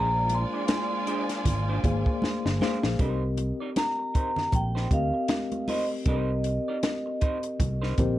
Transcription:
Already playing: fingered electric bass A#1, analog synth pad G#3 A#3 D4, tine electric piano A#3 G#4 C5 D5, string section F4 D5 G#5, vibraphone A#5
0.29 muted clean electric guitar stroke, closed hi-hat, muted conga
0.35 vibraphone C6
0.54 clean electric guitar D4 G#4 D5
0.68 snare, closed hi-hat, high conga
0.92 muted clean electric guitar stroke
1.07 clean electric guitar D4 G#4 C5, closed hi-hat
1.29 muted clean electric guitar stroke, snare, closed hi-hat
1.45 fingered electric bass G#1, muted clean electric guitar stroke, kick, closed hi-hat, muted conga, low conga
1.69 clean electric guitar D4 G#4 C5
1.84 fingered electric bass G#1, tine electric piano A#3 G#4 C5 F5, muted clean electric guitar stroke, kick, closed hi-hat, muted conga, low conga
2.06 muted clean electric guitar stroke, kick
2.22 muted clean electric guitar stroke, muted fingered electric bass stroke, snare, high conga
2.45 fingered electric bass G1, muted clean electric guitar stroke, snare
2.61 tine electric piano A#3 G#4 C5 F5, clean electric guitar D4 G#4 C5, snare, high conga
2.83 fingered electric bass A#1, muted clean electric guitar stroke, snare
2.99 fingered electric bass C2, tine electric piano C4 G4 A#4 D#5, clean electric guitar D#4 A#4 C5, kick, closed hi-hat, muted conga
3.38 muted clean electric guitar stroke, closed hi-hat, muted conga
3.60 clean electric guitar D#4 A#4 D5
3.76 vibraphone A#5, snare, closed hi-hat, high conga
3.99 muted clean electric guitar stroke
4.14 clean electric guitar D#4 A#4 C5, kick, closed hi-hat
4.36 muted clean electric guitar stroke, snare, low conga
4.52 fingered electric bass A#1, vibraphone G5, muted clean electric guitar stroke, kick, closed hi-hat, muted conga
4.75 clean electric guitar D#4 A#4 C5, snare
4.91 fingered electric bass D2, tine electric piano C4 G4 A#4 D#5, vibraphone F5, kick, closed hi-hat, muted conga
5.13 muted clean electric guitar stroke
5.28 muted clean electric guitar stroke, snare, closed hi-hat, high conga
5.52 muted clean electric guitar stroke, closed hi-hat, high conga
5.68 clean electric guitar D#4 A#4 C5, vibraphone D#5, open hi-hat, high conga
5.91 muted clean electric guitar stroke
6.05 fingered electric bass C2, tine electric piano C4 G4 A#4 D#5, clean electric guitar D#4 A#4 C5, vibraphone D#5, kick, closed hi-hat, muted conga
6.44 muted clean electric guitar stroke, closed hi-hat
6.68 clean electric guitar D#4 A#4 D5
6.83 snare, closed hi-hat, high conga
7.06 muted clean electric guitar stroke
7.21 clean electric guitar D#4 A#4 C5, kick, closed hi-hat
7.43 muted clean electric guitar stroke, closed hi-hat
7.60 fingered electric bass C2, muted clean electric guitar stroke, kick, closed hi-hat, muted conga, low conga
7.82 clean electric guitar D#4 A#4 C5, snare
7.98 fingered electric bass A#1, tine electric piano C4 G4 A#4 C5, muted clean electric guitar stroke, kick, closed hi-hat, muted conga, low conga

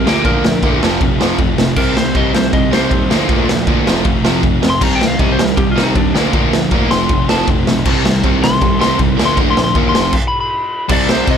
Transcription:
0.05 picked electric bass D2, distorted electric guitar A#2 D3 F3 A#3 D4 F4, lead electric guitar G4, snare
0.25 picked electric bass D2, distorted electric guitar A#2 F3 A#3, lead electric guitar A#4, kick, ride
0.44 distorted electric guitar A#2 F3, snare
0.63 picked electric bass D2, distorted electric guitar A#2 F3 A#3, kick, ride
0.82 picked electric bass F1, distorted electric guitar F2 C3 F3 A3 C4 F4, snare
1.01 picked electric bass F1, distorted electric guitar F2 C3, kick, ride
1.20 picked electric bass F1, distorted electric guitar F2 C3 F3, snare
1.38 picked electric bass F1, distorted electric guitar F2 C3, kick, ride
1.57 picked electric bass F1, distorted electric guitar F2 C3, snare
1.76 picked electric bass C2, distorted electric guitar C3 D#3 G3 C4 G4, lead electric guitar A#4, kick, crash
1.97 distorted electric guitar C3 G3, lead electric guitar C5, snare
2.15 picked electric bass C2, distorted electric guitar C3 G3 C4, lead electric guitar D#5, kick, ride
2.33 picked electric bass C2, distorted electric guitar C3 G3, lead electric guitar C5, snare
2.53 picked electric bass C2, distorted electric guitar C3 G3, lead electric guitar D#5, kick, ride
2.71 picked electric bass C2, distorted electric guitar C3 D#3 G3 C4 G4, lead electric guitar C5, snare
2.91 picked electric bass D#2, distorted electric guitar C3 D#3 G3 C4 G4, kick, ride
3.09 picked electric bass D2, distorted electric guitar A#2 D3 F3 A#3 D4 F4, snare
3.29 picked electric bass D2, distorted electric guitar A#2 F3 A#3, kick, ride
3.49 distorted electric guitar A#2 F3, snare
3.67 picked electric bass D2, distorted electric guitar A#2 F3 A#3, kick, ride
3.86 picked electric bass F1, distorted electric guitar F2 C3 F3 A3 C4 F4, snare
4.05 picked electric bass F1, distorted electric guitar F2 C3, kick, ride
4.24 picked electric bass F1, distorted electric guitar F2 C3 F3, snare
4.43 picked electric bass F1, distorted electric guitar F2 C3, kick, ride
4.63 picked electric bass F1, distorted electric guitar F2 C3, snare
4.70 lead electric guitar C6
4.81 picked electric bass C2, distorted electric guitar C3 D#3 G3 C4 G4, lead electric guitar A#5, kick, crash
4.95 lead electric guitar G5
5.01 distorted electric guitar C3 G3, snare
5.07 lead electric guitar F5
5.19 picked electric bass C2, distorted electric guitar C3 G3 C4, lead electric guitar D#5, kick, ride
5.32 lead electric guitar C5
5.38 picked electric bass C2, distorted electric guitar C3 G3, snare
5.45 lead electric guitar A#4
5.57 picked electric bass C2, distorted electric guitar C3 G3, lead electric guitar G4, kick, ride
5.71 lead electric guitar F4
5.75 picked electric bass C2, distorted electric guitar C3 D#3 G3 C4 G4, snare
5.83 lead electric guitar D#4
5.94 picked electric bass D#2, distorted electric guitar C3 D#3 G3 C4 G4, lead electric guitar D4, kick, ride
6.14 picked electric bass D2, distorted electric guitar A#2 D3 F3 A#3 D4 F4, snare
6.33 picked electric bass D2, distorted electric guitar A#2 F3 A#3, kick, ride
6.53 distorted electric guitar A#2 F3, snare
6.71 picked electric bass D2, distorted electric guitar A#2 F3 A#3, kick, ride
6.91 picked electric bass F1, distorted electric guitar F2 C3 F3 A3 C4 F4, lead electric guitar C6, snare
7.09 picked electric bass F1, distorted electric guitar F2 C3, kick, ride
7.29 picked electric bass F1, distorted electric guitar F2 C3 F3, lead electric guitar A5, snare
7.47 picked electric bass F1, distorted electric guitar F2 C3, kick, ride
7.67 picked electric bass B1, distorted electric guitar F2 C3, snare
7.85 picked electric bass C2, distorted electric guitar C3 D#3 G3 C4 G4, kick, crash
8.04 distorted electric guitar C3 G3, snare
8.23 picked electric bass C2, distorted electric guitar C3 G3 C4, kick, ride
8.44 picked electric bass C2, distorted electric guitar C3 G3, lead electric guitar C6, snare
8.62 picked electric bass C2, distorted electric guitar C3 G3, kick, ride
8.80 picked electric bass C2, distorted electric guitar C3 D#3 G3 C4 G4, lead electric guitar C6, snare
8.98 picked electric bass C2, distorted electric guitar C3 D#3 G3 C4 G4, kick, ride
9.17 picked electric bass D2, distorted electric guitar A#2 D3 F3 A#3 D4 F4, snare
9.25 lead electric guitar C6
9.37 picked electric bass D2, distorted electric guitar A#2 F3 A#3, kick, ride
9.50 lead electric guitar C6
9.57 distorted electric guitar A#2 F3, snare
9.64 lead electric guitar C6
9.75 picked electric bass D#2, distorted electric guitar A#2 F3 A#3, kick, ride
9.89 lead electric guitar C6
9.95 picked electric bass F1, distorted electric guitar F2 C3 F3, snare
10.02 lead electric guitar C6
10.13 kick, crash
10.28 lead electric guitar B5
10.40 lead electric guitar B5
10.88 picked electric bass C2, distorted electric guitar C3 G3, lead electric guitar D5, kick, crash
10.92 distorted electric guitar C4
11.09 picked electric bass C2, lead electric guitar C5, snare
11.27 picked electric bass C3, lead electric guitar D#5, kick, crash

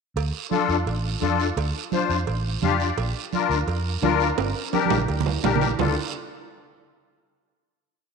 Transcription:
0.16 fingered electric bass D2, cowbell, high conga, long guiro
0.51 accordion D4 F4 A4, high conga, short guiro
0.69 fingered electric bass F2, short guiro
0.86 fingered electric bass A1, cowbell, high conga, long guiro
1.22 fingered electric bass F2, accordion D4 F4 A4, high conga, short guiro
1.40 short guiro
1.57 fingered electric bass D2, cowbell, high conga, long guiro
1.92 accordion D4 F4 C5, high conga, short guiro
2.10 fingered electric bass F2, short guiro
2.27 fingered electric bass A1, cowbell, high conga, long guiro
2.62 fingered electric bass F2, accordion D4 F4 G4 F5, high conga, low conga, short guiro
2.80 accordion D5, short guiro
2.97 fingered electric bass A#1, cowbell, high conga, long guiro
3.33 accordion D4 F4 A#4, high conga, short guiro
3.49 fingered electric bass D2, short guiro
3.67 fingered electric bass F2, cowbell, high conga, long guiro
4.02 fingered electric bass D2, accordion D4 F4 A#4, high conga, low timbale, short guiro
4.20 short guiro
4.38 fingered electric bass G1, cowbell, high conga, high timbale, long guiro
4.73 accordion D4 G4 A#4, high conga, high timbale, short guiro
4.86 high conga
4.90 fingered electric bass A#1, low timbale, short guiro
4.97 low conga
5.08 fingered electric bass D2, cowbell, long guiro
5.21 low conga
5.26 low timbale
5.43 fingered electric bass A#1, accordion D4 G4 A#4, low conga, low timbale, short guiro
5.56 low conga
5.61 low timbale, short guiro
5.67 low conga
5.79 fingered electric bass D2, accordion D4 F4 A4, low conga, low timbale, long guiro

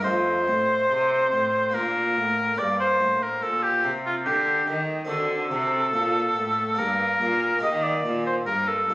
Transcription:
0.00 harpsichord A3 D#4 F4, oboe C5
0.04 harpsichord F2, cello F2
0.48 cello A2, harpsichord A2
0.90 harpsichord C3, cello C3
1.32 harpsichord A2, cello A2
1.70 harpsichord A#3 D4 F4
1.74 harpsichord A#2, cello A#2, oboe A#4
2.17 harpsichord A2, cello A2
2.55 harpsichord A#3 D4 G4, oboe D5
2.59 harpsichord G2, cello G2
2.80 oboe C5
3.00 harpsichord A2, cello A2
3.22 oboe A#4
3.42 harpsichord A#2, cello A#2, oboe A4
3.63 oboe G4
3.84 harpsichord C3, cello C3
4.06 oboe F4
4.25 harpsichord D3, cello D3, oboe G4
4.68 harpsichord D#3, cello D#3
5.05 harpsichord C4 D4 F#4
5.09 cello D3, harpsichord D3, oboe A4
5.51 harpsichord C3, cello C3
5.93 harpsichord A#2, cello A#2
6.36 harpsichord A2, cello A2
6.75 harpsichord A#3 D4 G4, oboe A#4
6.79 harpsichord G2, cello G2
7.21 harpsichord A#2, cello A#2
7.59 harpsichord A#3 D#4 G4
7.63 harpsichord D#3, cello D#3, oboe D#5
7.83 oboe D5
8.05 harpsichord A#2, cello A#2
8.26 oboe C5
8.46 harpsichord G2, cello G2, oboe A#4
8.68 oboe A4
8.90 cello A#2, harpsichord A#2

